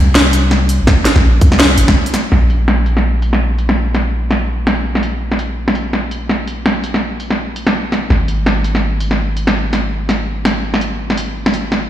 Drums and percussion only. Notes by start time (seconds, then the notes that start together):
0.15 snare
0.33 closed hi-hat
0.51 snare
0.69 closed hi-hat
0.87 kick, snare
1.05 snare, closed hi-hat
1.16 snare
1.41 kick, closed hi-hat
1.52 snare
1.60 snare
1.78 closed hi-hat
1.88 kick, snare
2.06 closed hi-hat
2.14 snare, closed hi-hat
2.32 snare
2.50 closed hi-hat
2.68 snare
2.86 closed hi-hat
2.97 snare
3.22 closed hi-hat
3.33 snare
3.59 closed hi-hat
3.69 snare
3.95 snare, closed hi-hat
4.31 snare, closed hi-hat
4.67 snare, closed hi-hat
4.95 snare
5.03 closed hi-hat
5.32 snare
5.39 closed hi-hat
5.68 snare
5.75 closed hi-hat
5.93 snare
6.11 closed hi-hat
6.29 snare
6.48 closed hi-hat
6.66 snare
6.84 closed hi-hat
6.94 snare
7.20 closed hi-hat
7.30 snare
7.56 closed hi-hat
7.67 snare
7.92 snare, closed hi-hat
8.10 snare
8.28 closed hi-hat
8.46 snare
8.64 closed hi-hat
8.75 snare
9.01 closed hi-hat
9.11 snare
9.37 closed hi-hat
9.47 snare
9.73 snare, closed hi-hat
10.09 snare, closed hi-hat
10.45 snare, closed hi-hat
10.74 snare
10.81 closed hi-hat
11.10 snare
11.18 closed hi-hat
11.46 snare
11.54 closed hi-hat
11.72 snare